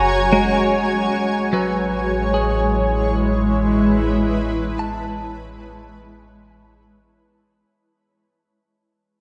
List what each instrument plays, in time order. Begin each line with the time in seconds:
Already playing: analog synth bass F#1, ambient pad F#4 C#5 G#5 A#5
0.33 clean electric guitar G#3
1.13 analog synth bass A1, ambient pad G#3
1.53 clean electric guitar F#3 B4
1.97 ambient pad E4
2.34 clean electric guitar G#4
2.39 ambient pad B4
4.79 clean electric guitar A5